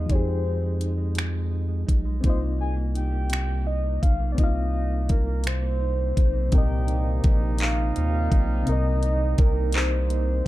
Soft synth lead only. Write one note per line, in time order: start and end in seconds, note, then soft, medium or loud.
0.00 0.12 D#5 medium
0.11 0.91 C5 medium
2.25 2.39 C5 medium
2.61 2.75 G#5 loud
2.96 3.68 G5 loud
3.67 4.04 D#5 loud
4.02 4.31 F5 medium
4.32 4.40 D5 medium
4.39 5.10 D#5 medium
5.11 5.48 A#4 medium
5.47 6.55 C5 loud
6.54 7.25 G5 loud
7.61 8.71 F5 loud
8.69 9.39 D#5 loud
9.40 9.77 A#4 medium
9.75 10.47 C5 loud